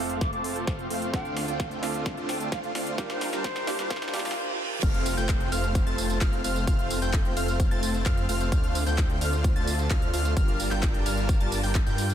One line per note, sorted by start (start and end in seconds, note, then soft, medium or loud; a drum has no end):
0.00 0.31 F1 loud
0.00 0.30 A3 medium
0.00 1.10 A3 medium
0.00 1.16 A3 medium
0.00 0.30 C4 medium
0.00 1.12 C4 medium
0.00 2.94 C4 medium
0.00 0.30 F4 medium
0.00 1.14 F4 medium
0.00 1.15 A4 loud
0.00 0.30 C5 medium
0.00 0.30 F5 loud
0.00 riser medium
0.10 closed hi-hat soft
0.21 0.29 D6 medium
0.21 kick loud
0.21 snare medium
0.21 closed hi-hat medium
0.33 0.65 F1 loud
0.33 0.65 A3 medium
0.33 0.65 C4 medium
0.33 0.65 F4 medium
0.33 0.65 C5 medium
0.33 0.65 A5 medium
0.33 0.40 D6 medium
0.33 closed hi-hat soft
0.44 open hi-hat loud
0.56 closed hi-hat soft
0.67 0.88 F1 medium
0.67 0.87 A3 medium
0.67 0.87 C4 medium
0.67 0.87 F4 medium
0.67 0.87 C5 medium
0.67 0.87 F5 loud
0.67 kick loud
0.67 snare medium
0.67 closed hi-hat soft
0.79 closed hi-hat soft
0.91 1.11 F1 medium
0.91 1.11 A3 medium
0.91 1.11 C4 medium
0.91 1.11 F4 medium
0.91 1.11 C5 medium
0.91 1.11 F5 loud
0.91 open hi-hat loud
1.02 closed hi-hat medium
1.12 1.46 D2 loud
1.12 2.96 D3 medium
1.12 2.96 A3 medium
1.12 1.45 A3 medium
1.12 1.79 C4 medium
1.12 1.80 D4 medium
1.12 1.45 D4 medium
1.12 4.33 F4 medium
1.12 1.45 F4 medium
1.12 1.80 F4 medium
1.12 1.81 A4 medium
1.12 1.45 C5 medium
1.12 1.45 F5 loud
1.12 1.33 G5 medium
1.12 kick loud
1.12 snare medium
1.12 closed hi-hat soft
1.25 closed hi-hat soft
1.37 snare medium
1.37 open hi-hat loud
1.48 1.81 D2 medium
1.48 1.80 A3 loud
1.48 1.80 D4 medium
1.48 1.80 F4 medium
1.48 1.80 C5 medium
1.48 1.68 F5 medium
1.48 1.80 G5 loud
1.48 closed hi-hat soft
1.60 kick loud
1.60 snare medium
1.60 closed hi-hat soft
1.71 closed hi-hat soft
1.82 2.15 D2 loud
1.82 2.15 A3 medium
1.82 2.95 C4 medium
1.82 2.95 D4 medium
1.82 2.15 D4 medium
1.82 2.15 F4 medium
1.82 2.96 F4 medium
1.82 2.96 A4 loud
1.82 2.15 C5 medium
1.82 2.15 F5 loud
1.82 snare medium
1.82 open hi-hat loud
1.94 closed hi-hat soft
2.06 kick loud
2.06 snare medium
2.06 closed hi-hat soft
2.17 2.50 D2 medium
2.17 2.49 A3 medium
2.17 2.49 D4 medium
2.17 2.49 F4 medium
2.17 2.49 C5 medium
2.17 2.49 A5 loud
2.17 closed hi-hat soft
2.29 2.36 G5 medium
2.29 snare medium
2.29 open hi-hat loud
2.41 2.48 G5 medium
2.41 closed hi-hat medium
2.52 2.73 D2 medium
2.52 2.72 A3 medium
2.52 2.72 D4 medium
2.52 2.72 F4 medium
2.52 2.72 C5 medium
2.52 2.72 F5 loud
2.52 2.59 F5 medium
2.52 kick loud
2.52 snare medium
2.52 closed hi-hat medium
2.64 2.71 F5 medium
2.64 closed hi-hat soft
2.75 2.96 D2 medium
2.75 2.95 A3 medium
2.75 2.95 D4 medium
2.75 2.95 F4 medium
2.75 2.95 C5 medium
2.75 2.95 F5 loud
2.75 snare medium
2.75 open hi-hat loud
2.87 closed hi-hat medium
2.97 3.31 G1 loud
2.97 3.30 G3 medium
2.97 4.35 G3 medium
2.97 3.64 A#3 medium
2.97 3.64 D4 medium
2.97 4.35 D4 medium
2.97 3.30 D4 medium
2.97 3.30 F4 medium
2.97 3.65 F4 medium
2.97 3.65 G4 medium
2.97 3.30 A#4 medium
2.97 4.35 A#4 loud
2.97 3.30 F5 loud
2.97 4.35 A5 medium
2.97 kick loud
2.97 snare medium
2.97 closed hi-hat soft
3.10 3.29 C5 loud
3.10 snare medium
3.10 closed hi-hat soft
3.21 snare loud
3.21 open hi-hat loud
3.33 3.65 G1 medium
3.33 3.65 G3 loud
3.33 3.65 D4 medium
3.33 3.65 F4 medium
3.33 3.65 A#4 medium
3.33 3.77 C5 medium
3.33 3.65 G5 loud
3.33 snare medium
3.33 closed hi-hat soft
3.44 kick loud
3.44 snare loud
3.44 closed hi-hat medium
3.56 snare medium
3.56 closed hi-hat soft
3.67 4.00 G1 loud
3.67 3.99 G3 medium
3.67 4.11 A#3 medium
3.67 4.11 D4 medium
3.67 3.99 D4 medium
3.67 3.99 F4 medium
3.67 4.11 F4 medium
3.67 4.12 G4 loud
3.67 3.99 A#4 medium
3.67 3.99 F5 loud
3.67 snare loud
3.67 open hi-hat loud
3.79 4.14 C5 loud
3.79 snare medium
3.79 closed hi-hat soft
3.90 kick loud
3.90 snare loud
3.90 closed hi-hat soft
3.90 reverse cymbal medium
3.96 snare medium
4.02 4.34 G1 medium
4.02 4.34 G3 medium
4.02 4.34 D4 medium
4.02 4.34 F4 medium
4.02 4.34 A#4 medium
4.02 4.34 A5 loud
4.02 snare medium
4.02 closed hi-hat soft
4.08 snare medium
4.13 4.36 A#3 medium
4.13 4.37 D4 medium
4.13 4.37 F4 medium
4.13 4.37 G4 loud
4.13 snare loud
4.13 open hi-hat loud
4.19 snare medium
4.25 snare medium
4.25 open hi-hat medium
4.31 snare medium
4.83 5.15 F1 medium
4.83 5.15 A3 medium
4.83 10.33 A3 medium
4.83 5.15 C4 medium
4.83 10.33 C4 medium
4.83 5.15 F4 medium
4.83 12.14 F4 medium
4.83 5.15 C5 medium
4.83 5.15 F5 loud
4.83 5.15 F6 medium
4.83 kick loud
4.83 closed hi-hat medium
4.83 crash loud
4.83 tambourine soft
4.83 downlifter medium
4.94 closed hi-hat soft
5.06 open hi-hat loud
5.06 tambourine medium
5.17 5.50 F1 loud
5.17 5.49 A3 medium
5.17 5.49 C4 medium
5.17 5.49 F4 medium
5.17 5.49 C5 medium
5.17 5.49 G5 loud
5.17 5.49 G6 loud
5.17 closed hi-hat soft
5.17 tambourine soft
5.29 kick loud
5.29 clap loud
5.29 closed hi-hat loud
5.29 tambourine soft
5.40 closed hi-hat soft
5.52 5.84 F1 loud
5.52 5.84 A3 medium
5.52 5.84 C4 medium
5.52 5.84 F4 medium
5.52 5.84 C5 medium
5.52 5.84 F5 loud
5.52 5.84 F6 loud
5.52 open hi-hat loud
5.52 tambourine medium
5.64 closed hi-hat soft
5.64 tambourine soft
5.75 kick loud
5.75 closed hi-hat loud
5.75 tambourine soft
5.87 6.19 F1 medium
5.87 6.18 A3 medium
5.87 6.18 C4 medium
5.87 6.18 F4 medium
5.87 6.18 C5 medium
5.87 6.19 A5 medium
5.87 6.19 A6 medium
5.87 closed hi-hat soft
5.98 open hi-hat loud
5.98 tambourine medium
6.10 closed hi-hat soft
6.10 tambourine soft
6.21 6.42 F1 loud
6.21 6.41 A3 loud
6.21 6.41 C4 medium
6.21 6.41 F4 medium
6.21 6.41 C5 medium
6.21 6.41 F5 loud
6.21 6.41 F6 loud
6.21 kick loud
6.21 clap loud
6.21 closed hi-hat loud
6.21 tambourine soft
6.33 closed hi-hat soft
6.44 6.65 F1 medium
6.44 6.65 A3 loud
6.44 6.65 C4 medium
6.44 6.65 F4 medium
6.44 6.65 C5 medium
6.44 6.65 F5 loud
6.44 6.65 F6 loud
6.44 open hi-hat loud
6.44 tambourine medium
6.56 closed hi-hat soft
6.56 tambourine soft
6.67 7.00 F1 medium
6.67 6.99 A3 medium
6.67 6.99 C4 medium
6.67 6.99 F4 medium
6.67 6.99 C5 medium
6.67 6.99 F5 medium
6.67 6.99 F6 loud
6.67 kick loud
6.67 closed hi-hat medium
6.67 tambourine soft
6.79 closed hi-hat soft
6.91 open hi-hat loud
6.91 tambourine medium
7.02 7.34 F1 loud
7.02 7.34 A3 loud
7.02 7.34 C4 medium
7.02 7.34 F4 medium
7.02 7.34 C5 medium
7.02 7.34 G5 loud
7.02 7.34 G6 loud
7.02 closed hi-hat soft
7.02 tambourine soft
7.14 kick loud
7.14 clap loud
7.14 closed hi-hat medium
7.14 tambourine soft
7.25 closed hi-hat soft
7.37 7.69 F1 loud
7.37 7.69 A3 medium
7.37 7.69 C4 medium
7.37 7.69 F4 medium
7.37 7.69 C5 medium
7.37 7.69 F5 medium
7.37 7.69 F6 loud
7.37 open hi-hat loud
7.37 tambourine medium
7.48 closed hi-hat soft
7.48 tambourine soft
7.60 kick loud
7.60 closed hi-hat medium
7.60 tambourine soft
7.71 8.04 F1 medium
7.71 8.03 A3 medium
7.71 8.03 C4 medium
7.71 8.03 F4 medium
7.71 8.03 C5 medium
7.71 8.03 A5 medium
7.71 8.03 A6 loud
7.71 closed hi-hat soft
7.83 open hi-hat loud
7.83 tambourine medium
7.94 closed hi-hat soft
7.94 tambourine soft
8.06 8.27 F2 medium
8.06 8.26 A3 loud
8.06 8.26 C4 medium
8.06 8.26 F4 medium
8.06 8.26 C5 medium
8.06 8.26 F5 loud
8.06 8.26 F6 loud
8.06 kick loud
8.06 clap loud
8.06 closed hi-hat medium
8.06 tambourine soft
8.17 closed hi-hat soft
8.29 8.50 F1 loud
8.29 8.49 A3 loud
8.29 8.49 C4 medium
8.29 8.49 F4 medium
8.29 8.49 C5 medium
8.29 8.49 F5 loud
8.29 8.49 F6 loud
8.29 open hi-hat loud
8.29 tambourine medium
8.41 closed hi-hat soft
8.41 tambourine soft
8.52 8.84 D2 medium
8.52 10.35 D3 medium
8.52 8.84 A3 medium
8.52 8.84 D4 medium
8.52 8.84 F4 medium
8.52 8.84 C5 medium
8.52 8.84 F5 medium
8.52 8.84 F6 loud
8.52 kick loud
8.52 closed hi-hat medium
8.52 tambourine soft
8.64 closed hi-hat soft
8.75 open hi-hat loud
8.75 tambourine medium
8.87 9.19 D2 loud
8.87 9.19 A3 loud
8.87 9.19 D4 medium
8.87 9.19 F4 medium
8.87 9.19 C5 medium
8.87 9.19 G5 loud
8.87 9.18 G6 loud
8.87 closed hi-hat soft
8.87 tambourine soft
8.98 kick loud
8.98 clap loud
8.98 closed hi-hat medium
8.98 tambourine soft
9.10 closed hi-hat soft
9.21 9.54 D2 loud
9.21 9.53 A3 medium
9.21 9.53 D4 medium
9.21 9.53 F4 medium
9.21 9.53 C5 medium
9.21 9.53 F5 loud
9.21 9.53 F6 loud
9.21 open hi-hat loud
9.21 tambourine medium
9.33 closed hi-hat soft
9.33 tambourine soft
9.44 kick loud
9.44 closed hi-hat medium
9.44 tambourine soft
9.56 9.88 D2 medium
9.56 9.88 A3 medium
9.56 9.88 D4 medium
9.56 9.88 F4 medium
9.56 9.88 C5 medium
9.56 9.88 A5 medium
9.56 9.88 A6 loud
9.56 closed hi-hat soft
9.67 open hi-hat loud
9.67 tambourine medium
9.79 closed hi-hat soft
9.79 tambourine soft
9.90 10.11 D2 medium
9.90 10.10 A3 loud
9.90 10.10 D4 medium
9.90 10.10 F4 medium
9.90 10.10 C5 medium
9.90 10.10 F5 loud
9.90 10.10 F6 loud
9.90 kick loud
9.90 clap loud
9.90 closed hi-hat medium
9.90 tambourine soft
10.02 closed hi-hat soft
10.13 10.34 D2 medium
10.13 10.34 A3 medium
10.13 10.34 D4 medium
10.13 10.34 F4 medium
10.13 10.34 C5 medium
10.13 10.34 F5 loud
10.13 10.34 F6 loud
10.13 open hi-hat loud
10.13 tambourine medium
10.25 closed hi-hat soft
10.25 tambourine soft
10.37 10.69 G1 loud
10.37 12.14 G3 medium
10.37 10.69 G3 medium
10.37 12.14 D4 medium
10.37 10.69 D4 medium
10.37 10.69 F4 medium
10.37 12.14 A#4 medium
10.37 10.69 A#4 medium
10.37 10.69 F5 medium
10.37 12.14 A5 medium
10.37 10.68 F6 loud
10.37 kick loud
10.37 closed hi-hat medium
10.37 tambourine soft
10.48 closed hi-hat soft
10.60 open hi-hat loud
10.60 tambourine medium
10.71 11.04 G1 loud
10.71 11.03 G3 medium
10.71 11.03 D4 medium
10.71 11.03 F4 medium
10.71 11.03 A#4 medium
10.71 11.03 G5 loud
10.71 11.03 G6 loud
10.71 clap soft
10.71 closed hi-hat soft
10.71 tambourine soft
10.83 kick loud
10.83 clap loud
10.83 closed hi-hat medium
10.83 tambourine soft
10.94 closed hi-hat soft
11.06 11.38 G1 loud
11.06 11.38 G3 medium
11.06 11.38 D4 medium
11.06 11.38 F4 medium
11.06 11.38 A#4 medium
11.06 11.38 F5 loud
11.06 11.38 F6 loud
11.06 open hi-hat loud
11.06 tambourine medium
11.17 closed hi-hat soft
11.17 tambourine soft
11.29 kick loud
11.29 closed hi-hat medium
11.29 tambourine soft
11.40 11.61 G1 loud
11.40 11.61 G3 medium
11.40 11.61 D4 medium
11.40 11.61 F4 medium
11.40 11.61 A#4 medium
11.40 11.61 A5 medium
11.40 11.61 A6 loud
11.40 closed hi-hat soft
11.52 open hi-hat loud
11.52 tambourine medium
11.64 11.84 G1 medium
11.64 11.81 G3 medium
11.64 11.81 D4 medium
11.64 11.81 F4 medium
11.64 11.81 A#4 medium
11.64 11.81 G5 medium
11.64 11.81 G6 medium
11.64 open hi-hat medium
11.64 tambourine soft
11.75 kick loud
11.75 clap loud
11.75 closed hi-hat medium
11.75 tambourine soft
11.87 12.14 G2 loud
11.87 12.14 G3 medium
11.87 12.14 D4 medium
11.87 12.14 F4 medium
11.87 12.14 A#4 medium
11.87 12.14 G5 medium
11.87 12.14 G6 medium
11.87 closed hi-hat soft
11.87 tambourine soft
11.98 open hi-hat loud
11.98 tambourine medium
12.10 closed hi-hat soft
12.10 tambourine soft